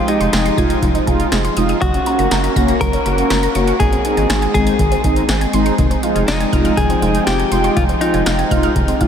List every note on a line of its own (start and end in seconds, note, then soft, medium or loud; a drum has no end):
0.00 1.78 F3 medium
0.00 1.78 G#3 medium
0.00 1.78 C4 medium
0.00 1.78 D#4 medium
0.00 1.78 G5 medium
0.08 0.28 G#3 medium
0.08 0.28 D#4 medium
0.08 1.03 D#4 medium
0.08 0.28 G4 medium
0.08 0.16 G#4 medium
0.08 closed hi-hat medium
0.20 0.29 F1 loud
0.20 0.29 C6 medium
0.20 closed hi-hat soft
0.33 0.50 F1 loud
0.33 0.41 G#4 medium
0.33 snare loud
0.33 closed hi-hat medium
0.45 0.54 C6 medium
0.45 closed hi-hat medium
0.58 0.75 F1 loud
0.58 0.78 G#3 medium
0.58 0.77 D#4 medium
0.58 0.77 F4 medium
0.58 0.66 G#6 medium
0.58 kick medium
0.58 closed hi-hat medium
0.70 0.78 G#6 medium
0.70 closed hi-hat medium
0.82 1.00 F1 loud
0.82 0.91 F3 medium
0.82 kick medium
0.82 closed hi-hat medium
0.95 1.03 D#4 medium
0.95 closed hi-hat medium
1.07 1.25 F1 medium
1.07 1.27 G#3 medium
1.07 1.27 D#4 medium
1.07 1.27 F4 loud
1.07 1.16 G#4 medium
1.07 kick medium
1.07 closed hi-hat medium
1.20 closed hi-hat soft
1.32 1.49 F1 medium
1.32 1.41 G#4 medium
1.32 snare loud
1.32 closed hi-hat medium
1.45 1.53 C6 medium
1.45 closed hi-hat medium
1.57 1.74 F1 medium
1.57 1.77 G#3 medium
1.57 1.77 D#4 medium
1.57 1.77 F4 loud
1.57 1.65 D#6 medium
1.57 closed hi-hat medium
1.69 1.78 D#6 medium
1.69 closed hi-hat soft
1.82 1.99 F#1 loud
1.82 1.90 F#3 medium
1.82 3.78 A#3 medium
1.82 3.78 C#4 medium
1.82 2.52 F#4 loud
1.82 3.78 F#4 medium
1.82 kick loud
1.82 closed hi-hat medium
1.94 2.02 C#4 medium
1.94 closed hi-hat soft
2.06 2.26 A#3 medium
2.06 2.26 C#4 medium
2.06 2.26 F#4 medium
2.06 2.15 A#4 medium
2.06 closed hi-hat medium
2.19 2.28 F#1 loud
2.19 2.27 A#5 medium
2.19 closed hi-hat soft
2.31 2.49 F#1 loud
2.31 2.40 A#4 medium
2.31 snare loud
2.31 closed hi-hat medium
2.44 2.52 A#5 medium
2.44 closed hi-hat medium
2.56 2.73 F#1 loud
2.56 2.76 A#3 medium
2.56 2.76 C#4 medium
2.56 2.76 F#4 loud
2.56 2.64 A#6 medium
2.56 kick medium
2.56 closed hi-hat medium
2.68 2.77 A#6 medium
2.68 closed hi-hat medium
2.81 2.98 F#1 loud
2.81 2.89 F#3 medium
2.81 3.79 A#4 loud
2.81 kick medium
2.81 closed hi-hat medium
2.93 3.02 C#4 medium
2.93 closed hi-hat medium
3.06 3.23 F#1 loud
3.06 3.25 A#3 medium
3.06 3.25 C#4 medium
3.06 3.25 F#4 medium
3.06 3.14 A#4 medium
3.06 closed hi-hat medium
3.18 closed hi-hat soft
3.30 3.48 F#1 loud
3.30 3.39 A#4 medium
3.30 snare loud
3.30 closed hi-hat medium
3.43 3.51 A#5 medium
3.43 closed hi-hat medium
3.55 3.73 F#1 medium
3.55 3.75 A#3 medium
3.55 3.75 C#4 medium
3.55 3.75 F#4 loud
3.55 3.64 C#6 medium
3.55 closed hi-hat medium
3.68 3.76 C#6 medium
3.68 closed hi-hat soft
3.80 3.97 G#1 loud
3.80 3.88 D#3 medium
3.80 5.76 G#3 medium
3.80 9.08 C4 medium
3.80 9.08 D#4 medium
3.80 4.53 G#4 medium
3.80 kick loud
3.80 closed hi-hat medium
3.92 4.01 C4 medium
3.92 closed hi-hat soft
4.05 4.25 G#3 medium
4.05 4.25 C4 medium
4.05 4.25 D#4 medium
4.05 4.13 G#4 medium
4.05 closed hi-hat medium
4.17 4.26 G#1 medium
4.17 4.26 G#5 medium
4.17 closed hi-hat soft
4.30 4.47 G#1 loud
4.30 4.38 G#4 medium
4.30 snare loud
4.30 closed hi-hat medium
4.42 4.50 G#5 medium
4.42 closed hi-hat medium
4.54 4.72 G#1 loud
4.54 4.74 G#3 medium
4.54 4.74 C4 medium
4.54 4.74 D#4 medium
4.54 5.00 G#4 medium
4.54 4.63 G#6 medium
4.54 kick medium
4.54 closed hi-hat medium
4.67 4.75 G#6 medium
4.67 closed hi-hat medium
4.79 4.96 G#1 loud
4.79 4.88 D#3 medium
4.79 kick medium
4.79 closed hi-hat medium
4.92 5.00 C4 medium
4.92 closed hi-hat medium
5.04 5.21 G#1 loud
5.04 5.24 G#3 medium
5.04 5.24 C4 medium
5.04 5.24 D#4 medium
5.04 5.12 G#4 medium
5.04 kick medium
5.04 closed hi-hat medium
5.16 closed hi-hat soft
5.29 5.46 G#1 loud
5.29 5.37 G#4 medium
5.29 snare loud
5.29 closed hi-hat medium
5.41 5.49 G#5 medium
5.41 closed hi-hat medium
5.53 5.71 G#1 loud
5.53 5.73 G#3 medium
5.53 5.73 C4 medium
5.53 5.73 D#4 loud
5.53 5.62 C6 medium
5.53 closed hi-hat medium
5.66 5.74 C6 medium
5.66 closed hi-hat soft
5.78 5.96 F1 loud
5.78 5.87 D#3 medium
5.78 9.08 F3 medium
5.78 9.08 G#3 medium
5.78 9.08 G5 medium
5.78 kick loud
5.78 closed hi-hat medium
5.91 5.99 C4 medium
5.91 closed hi-hat soft
6.03 6.23 G#3 medium
6.03 6.23 D#4 medium
6.03 6.11 F4 medium
6.03 6.23 F4 medium
6.03 closed hi-hat medium
6.16 6.24 F1 loud
6.16 6.24 G#5 medium
6.16 closed hi-hat soft
6.28 6.45 F1 loud
6.28 6.79 D#4 medium
6.28 6.36 F4 medium
6.28 snare loud
6.28 closed hi-hat medium
6.40 6.49 G#5 medium
6.40 closed hi-hat medium
6.52 6.70 F1 loud
6.52 6.72 G#3 medium
6.52 6.72 D#4 medium
6.52 6.72 F4 medium
6.52 6.61 F6 medium
6.52 kick medium
6.52 closed hi-hat medium
6.65 6.73 F6 medium
6.65 closed hi-hat medium
6.77 6.95 F1 loud
6.77 6.86 D#3 medium
6.77 7.26 G#4 loud
6.77 kick medium
6.77 closed hi-hat medium
6.90 6.98 C4 medium
6.90 closed hi-hat medium
7.02 7.20 F1 loud
7.02 7.22 G#3 medium
7.02 7.22 D#4 medium
7.02 7.11 F4 medium
7.02 7.22 G#4 medium
7.02 closed hi-hat medium
7.15 closed hi-hat soft
7.27 7.44 F1 loud
7.27 7.35 F4 medium
7.27 7.78 G4 loud
7.27 snare loud
7.27 closed hi-hat medium
7.39 7.48 G#5 medium
7.39 closed hi-hat medium
7.52 7.69 F1 loud
7.52 7.72 G#3 medium
7.52 7.72 D#4 medium
7.52 7.72 F4 medium
7.52 7.60 C6 medium
7.52 closed hi-hat medium
7.64 7.73 C6 medium
7.64 closed hi-hat soft
7.76 7.94 F1 loud
7.76 7.85 D#3 loud
7.76 7.83 F4 medium
7.76 kick loud
7.76 closed hi-hat medium
7.89 7.97 C4 medium
7.89 closed hi-hat soft
8.01 8.21 G#3 medium
8.01 8.96 D#4 medium
8.01 8.21 D#4 medium
8.01 8.10 F4 medium
8.01 8.21 F4 medium
8.01 closed hi-hat medium
8.14 8.23 F1 loud
8.14 8.22 G#5 medium
8.14 closed hi-hat soft
8.26 8.44 F1 loud
8.26 8.35 F4 medium
8.26 snare loud
8.26 closed hi-hat medium
8.39 8.47 G#5 medium
8.39 closed hi-hat medium
8.51 8.68 F1 loud
8.51 8.71 G#3 medium
8.51 8.71 D#4 medium
8.51 8.71 F4 medium
8.51 8.59 F6 medium
8.51 kick medium
8.51 closed hi-hat medium
8.63 8.72 F6 medium
8.63 closed hi-hat medium
8.76 8.93 F1 loud
8.76 8.84 D#3 medium
8.76 kick medium
8.76 closed hi-hat medium
8.88 8.97 C4 medium
8.88 closed hi-hat medium
9.01 9.08 F1 loud
9.01 9.08 G#3 medium
9.01 9.08 D#4 medium
9.01 9.08 F4 loud
9.01 9.08 F4 medium
9.01 kick medium
9.01 closed hi-hat medium